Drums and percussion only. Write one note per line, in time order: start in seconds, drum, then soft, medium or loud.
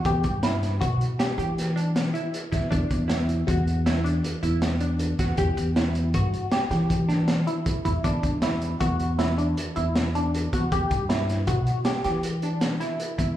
0.05 kick loud
0.05 closed hi-hat medium
0.23 kick medium
0.23 closed hi-hat medium
0.43 snare loud
0.43 closed hi-hat medium
0.63 snare soft
0.63 closed hi-hat medium
0.82 kick loud
0.82 closed hi-hat medium
1.01 closed hi-hat medium
1.20 snare loud
1.20 closed hi-hat medium
1.39 closed hi-hat medium
1.58 snare soft
1.58 closed hi-hat medium
1.77 closed hi-hat medium
1.96 snare loud
1.96 closed hi-hat medium
2.15 closed hi-hat medium
2.34 closed hi-hat medium
2.52 kick medium
2.52 snare soft
2.52 closed hi-hat medium
2.72 kick loud
2.72 closed hi-hat medium
2.91 kick medium
2.91 closed hi-hat medium
3.09 snare loud
3.09 closed hi-hat medium
3.29 closed hi-hat medium
3.48 kick loud
3.48 closed hi-hat medium
3.67 closed hi-hat medium
3.86 snare loud
3.86 closed hi-hat medium
4.06 closed hi-hat medium
4.24 closed hi-hat medium
4.43 closed hi-hat medium
4.62 snare loud
4.62 closed hi-hat medium
4.80 closed hi-hat medium
4.99 closed hi-hat medium
5.19 kick medium
5.19 snare soft
5.19 closed hi-hat medium
5.37 kick loud
5.37 closed hi-hat medium
5.57 closed hi-hat medium
5.76 snare loud
5.76 closed hi-hat medium
5.95 closed hi-hat medium
6.14 kick loud
6.14 closed hi-hat medium
6.33 closed hi-hat medium
6.52 snare loud
6.52 closed hi-hat medium
6.71 snare soft
6.71 closed hi-hat medium
6.90 kick loud
6.90 closed hi-hat medium
7.09 snare soft
7.09 closed hi-hat medium
7.28 snare loud
7.28 closed hi-hat medium
7.47 closed hi-hat medium
7.66 kick loud
7.66 closed hi-hat medium
7.85 kick medium
7.85 closed hi-hat medium
8.04 kick loud
8.04 closed hi-hat medium
8.23 kick medium
8.23 closed hi-hat medium
8.42 snare medium
8.42 closed hi-hat medium
8.62 closed hi-hat medium
8.80 kick loud
8.80 closed hi-hat medium
9.00 closed hi-hat medium
9.19 snare loud
9.19 closed hi-hat medium
9.38 closed hi-hat medium
9.57 closed hi-hat medium
9.76 closed hi-hat soft
9.96 snare loud
9.96 closed hi-hat medium
10.15 closed hi-hat soft
10.34 closed hi-hat medium
10.53 kick medium
10.53 closed hi-hat medium
10.72 kick loud
10.72 closed hi-hat medium
10.91 kick medium
10.91 closed hi-hat medium
11.10 snare loud
11.10 closed hi-hat medium
11.29 snare soft
11.29 closed hi-hat medium
11.47 kick loud
11.47 closed hi-hat medium
11.67 closed hi-hat medium
11.85 snare loud
11.85 closed hi-hat medium
12.04 snare soft
12.04 closed hi-hat medium
12.23 closed hi-hat medium
12.42 closed hi-hat medium
12.61 snare loud
12.61 closed hi-hat medium
12.81 snare soft
12.81 closed hi-hat medium
13.00 closed hi-hat medium
13.19 kick medium
13.19 closed hi-hat medium